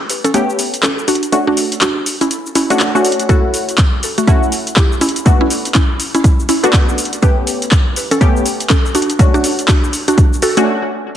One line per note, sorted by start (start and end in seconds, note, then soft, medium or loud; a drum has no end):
0.00 0.32 A3 medium
0.00 0.32 B3 medium
0.00 0.32 C#4 medium
0.00 0.32 G4 loud
0.10 open hi-hat loud
0.10 shaker medium
0.24 0.52 C#4 medium
0.24 0.52 A4 medium
0.24 closed hi-hat medium
0.24 shaker soft
0.34 0.59 A3 loud
0.34 0.59 B3 medium
0.34 0.59 C#4 medium
0.34 0.59 G4 loud
0.34 closed hi-hat medium
0.34 shaker soft
0.50 shaker soft
0.59 open hi-hat loud
0.59 shaker medium
0.74 closed hi-hat medium
0.74 shaker soft
0.83 1.03 C#4 medium
0.83 1.03 A4 medium
0.83 clap loud
0.83 closed hi-hat soft
0.83 shaker soft
0.99 shaker soft
1.08 1.37 D4 medium
1.08 1.37 F#4 loud
1.08 open hi-hat medium
1.08 shaker medium
1.15 closed hi-hat medium
1.23 closed hi-hat medium
1.23 shaker soft
1.32 2.67 A3 medium
1.32 2.67 C#4 medium
1.32 2.67 D4 medium
1.32 2.67 F#4 medium
1.32 closed hi-hat medium
1.32 shaker soft
1.47 1.75 D4 medium
1.47 1.75 F#4 medium
1.57 open hi-hat loud
1.57 shaker medium
1.72 closed hi-hat soft
1.72 shaker soft
1.81 2.11 D4 medium
1.81 2.11 F#4 medium
1.81 clap loud
1.81 closed hi-hat medium
1.81 shaker soft
2.06 open hi-hat medium
2.06 shaker medium
2.21 2.49 C#4 medium
2.21 2.49 E4 medium
2.21 closed hi-hat medium
2.21 shaker soft
2.31 closed hi-hat medium
2.31 shaker soft
2.46 shaker soft
2.55 2.76 C#4 medium
2.55 2.76 E4 medium
2.55 open hi-hat loud
2.55 shaker medium
2.70 2.91 A3 medium
2.70 2.91 C#4 medium
2.70 2.91 D4 medium
2.70 2.91 F#4 medium
2.70 closed hi-hat medium
2.70 shaker soft
2.80 clap loud
2.80 closed hi-hat soft
2.80 shaker soft
2.95 3.27 A3 medium
2.95 3.27 C#4 medium
2.95 3.27 D4 medium
2.95 3.27 F#4 medium
2.95 shaker soft
3.05 open hi-hat medium
3.05 shaker medium
3.12 closed hi-hat medium
3.19 closed hi-hat medium
3.19 shaker soft
3.29 4.25 A3 medium
3.29 4.25 C#4 medium
3.29 4.25 E4 medium
3.29 3.58 F#4 medium
3.29 4.25 F#4 medium
3.29 3.58 A4 loud
3.29 kick loud
3.29 closed hi-hat medium
3.29 shaker soft
3.54 open hi-hat loud
3.54 shaker medium
3.69 closed hi-hat soft
3.69 shaker soft
3.78 kick loud
3.78 clap loud
3.78 closed hi-hat medium
3.78 shaker soft
4.03 open hi-hat loud
4.03 shaker medium
4.18 4.45 A3 medium
4.18 4.45 F#4 medium
4.18 closed hi-hat soft
4.18 shaker soft
4.27 4.52 A3 loud
4.27 4.52 C#4 medium
4.27 4.52 E4 medium
4.27 4.52 F#4 loud
4.27 kick loud
4.27 closed hi-hat medium
4.27 shaker soft
4.43 shaker soft
4.52 open hi-hat loud
4.52 shaker medium
4.67 closed hi-hat medium
4.67 shaker soft
4.76 4.97 E4 medium
4.76 4.97 G4 medium
4.76 kick loud
4.76 clap loud
4.76 closed hi-hat soft
4.76 shaker soft
4.92 shaker soft
5.01 5.31 C#4 medium
5.01 5.31 E4 loud
5.01 open hi-hat medium
5.01 shaker medium
5.09 closed hi-hat medium
5.16 closed hi-hat soft
5.16 shaker soft
5.25 6.60 A3 medium
5.25 6.60 B3 medium
5.25 6.60 D4 medium
5.25 6.60 F#4 medium
5.25 kick loud
5.25 closed hi-hat medium
5.25 shaker soft
5.41 5.68 C#4 medium
5.41 5.68 E4 medium
5.50 open hi-hat loud
5.50 shaker medium
5.65 closed hi-hat medium
5.65 shaker soft
5.75 6.04 C#4 medium
5.75 6.04 E4 medium
5.75 kick loud
5.75 clap loud
5.75 closed hi-hat medium
5.75 shaker soft
6.00 open hi-hat medium
6.00 shaker medium
6.15 6.42 C#4 medium
6.15 6.42 E4 medium
6.15 closed hi-hat medium
6.15 shaker soft
6.24 kick loud
6.24 closed hi-hat medium
6.24 shaker soft
6.40 shaker soft
6.49 6.69 C#4 medium
6.49 6.69 E4 medium
6.49 open hi-hat loud
6.49 shaker medium
6.63 7.20 A3 medium
6.63 7.20 B3 medium
6.63 7.20 D4 medium
6.63 7.20 F#4 loud
6.63 closed hi-hat medium
6.63 shaker soft
6.73 kick loud
6.73 clap loud
6.73 closed hi-hat soft
6.73 shaker soft
6.89 shaker soft
6.98 open hi-hat medium
6.98 shaker medium
7.05 closed hi-hat medium
7.13 closed hi-hat medium
7.13 shaker soft
7.22 8.18 A3 medium
7.22 8.19 B3 medium
7.22 8.19 C#4 medium
7.22 7.52 G4 medium
7.22 8.19 G4 medium
7.22 7.52 B4 loud
7.22 kick loud
7.22 closed hi-hat medium
7.22 shaker soft
7.47 open hi-hat loud
7.47 shaker medium
7.62 closed hi-hat medium
7.62 shaker soft
7.71 kick loud
7.71 clap loud
7.71 closed hi-hat medium
7.71 shaker soft
7.96 open hi-hat medium
7.96 shaker medium
8.11 8.39 C#4 medium
8.11 8.39 A4 medium
8.11 closed hi-hat medium
8.11 shaker soft
8.21 8.45 A3 loud
8.21 8.45 B3 medium
8.21 8.46 C#4 medium
8.21 8.46 G4 loud
8.21 kick loud
8.21 closed hi-hat medium
8.21 shaker soft
8.37 shaker soft
8.46 open hi-hat loud
8.46 shaker medium
8.60 closed hi-hat medium
8.60 shaker soft
8.70 8.90 C#4 medium
8.70 8.90 A4 medium
8.70 kick loud
8.70 clap loud
8.70 closed hi-hat soft
8.70 shaker soft
8.86 shaker soft
8.95 9.24 D4 medium
8.95 9.24 F#4 loud
8.95 open hi-hat medium
8.95 shaker medium
9.02 closed hi-hat medium
9.10 closed hi-hat medium
9.10 shaker soft
9.19 10.53 A3 medium
9.19 10.54 C#4 medium
9.19 10.54 D4 medium
9.19 10.54 F#4 medium
9.19 kick loud
9.19 closed hi-hat medium
9.19 shaker soft
9.34 9.62 D4 medium
9.34 9.62 F#4 loud
9.34 shaker soft
9.44 open hi-hat loud
9.44 shaker medium
9.59 closed hi-hat medium
9.59 shaker soft
9.68 9.98 D4 medium
9.68 9.98 F#4 medium
9.68 kick loud
9.68 clap loud
9.68 closed hi-hat medium
9.68 shaker soft
9.84 shaker soft
9.93 open hi-hat medium
9.93 shaker medium
10.08 10.36 D4 medium
10.08 10.36 F#4 medium
10.08 closed hi-hat medium
10.08 shaker soft
10.18 kick loud
10.18 closed hi-hat medium
10.18 shaker soft
10.33 shaker soft
10.42 10.63 F#4 medium
10.42 10.63 A4 medium
10.42 open hi-hat loud
10.42 shaker medium
10.57 10.67 A3 medium
10.57 10.67 C#4 medium
10.57 10.67 D4 medium
10.57 10.67 F#4 loud
10.57 closed hi-hat medium
10.57 shaker soft